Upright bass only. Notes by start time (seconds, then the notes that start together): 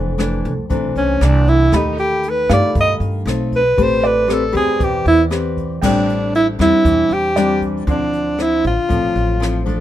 Already playing: F1
0.45 C2
0.70 C2
0.96 C2
1.21 C2
1.73 D#2
2.50 G2
2.76 G2
3.00 G2
3.26 B1
3.78 A1
4.55 E2
4.80 E2
5.06 E2
5.82 A1
6.59 E2
6.85 E2
7.09 E2
7.87 D2
8.65 A1
8.90 A1
9.16 A1